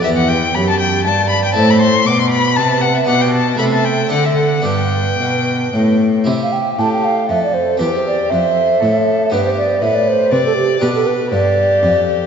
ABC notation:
X:1
M:3/4
L:1/16
Q:1/4=118
K:G
V:1 name="Violin"
e f g2 b a g2 a2 b g | a b c'2 d' c' b2 a2 f e | f g a2 b a g2 f e f2 | g8- g2 z2 |
[K:C] z4 G4 A4 | G4 c4 A4 | G4 B4 d4 | B4 G8 |]
V:2 name="Flute"
B2 z2 G4 d4 | c4 B8- | B4 A8 | B8- B2 z2 |
[K:C] e f g2 a g f2 e d c2 | B c d2 e8 | B c d2 e d c2 B A G2 | G A B2 d8 |]
V:3 name="Harpsichord"
[B,EG]12 | [CEA]12 | [B,DG]4 [A,EA]4 [CDA]4 | [B,DG]12 |
[K:C] [EG]12 | [CG]12 | [B,G]12 | [DG]12 |]
V:4 name="Harpsichord" clef=bass
E,,4 F,,4 G,,4 | A,,4 B,,4 C,4 | B,,4 C,4 D,4 | G,,4 B,,4 A,,4 |
[K:C] C,4 A,,4 F,,4 | E,,4 F,,4 A,,4 | G,,4 A,,4 C,4 | B,,4 G,,4 F,,4 |]
V:5 name="Cello" clef=bass
E,,4 F,,4 G,,4 | A,,4 B,,4 C,4 | B,,4 C,4 D,4 | G,,4 B,,4 A,,4 |
[K:C] C,4 A,,4 F,,4 | E,,4 F,,4 A,,4 | G,,4 A,,4 C,4 | B,,4 G,,4 F,,4 |]